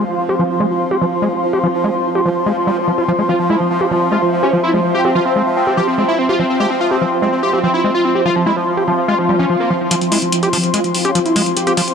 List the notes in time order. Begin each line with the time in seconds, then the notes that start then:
Already playing: F3 C4 F4 F5 C6
0.29 G4
0.39 F3
0.60 G#3
0.91 G4
1.01 F3
1.22 G#3
1.53 G4
1.63 F3
1.84 G#3
2.15 G4
2.25 F3
2.46 G#3
2.67 G3
2.88 F3
2.98 F4
3.08 F3
3.19 G#3
3.29 F3 F4
3.39 F3
3.50 G#3 E4 E5
3.60 F3
3.70 F3
3.81 G4
3.91 F3
4.01 F3
4.12 G#3 F4
4.22 F3
4.32 F3
4.43 C#4 G4
4.53 F3
4.64 E4
4.74 F3 G#3
4.84 F3
4.95 G4
5.05 C4 G4
5.15 F3 F4
5.26 C4
5.36 G#3 C4
5.57 C4
5.67 C4 G4
5.77 F3 G4
5.88 C4
5.98 G#3 C4
6.08 E4
6.19 C4
6.29 F4 G4
6.39 F3 C4
6.50 C4
6.60 G#3 G4
6.70 C4
6.81 F4
6.91 C4 G4
7.01 F3 C4
7.22 G#3 C4
7.32 C4
7.43 G4
7.53 C4 G4
7.63 F3 C4
7.74 E4
7.84 G#3 C4
7.95 F4
8.05 C4
8.15 C4 G4
8.26 F3 F4
8.36 F3
8.46 G#3 E4
8.57 F3
8.67 F3
8.77 G4
8.88 F3
8.98 F3
9.08 G#3 F4, swell
9.19 F3
9.29 F3 G3
9.39 F3 C#4
9.50 F3
9.60 A#3
9.70 F3
9.81 F3
9.91 F3 F4, closed hi-hat
10.01 F3, closed hi-hat
10.12 G#3 E4, open hi-hat
10.22 F3, closed hi-hat
10.32 F3, closed hi-hat
10.43 G4, closed hi-hat
10.49 F5
10.53 F3, open hi-hat
10.63 F3, closed hi-hat
10.74 G#3 F4, closed hi-hat
10.84 F3, closed hi-hat
10.95 F3, open hi-hat
11.05 C#4 G4, closed hi-hat
11.15 F3, closed hi-hat
11.26 E4, closed hi-hat
11.36 F3 G#3, open hi-hat
11.46 F3, closed hi-hat
11.57 G4, closed hi-hat
11.67 C4 G4, closed hi-hat
11.77 F3 F4, open hi-hat
11.88 C4, closed hi-hat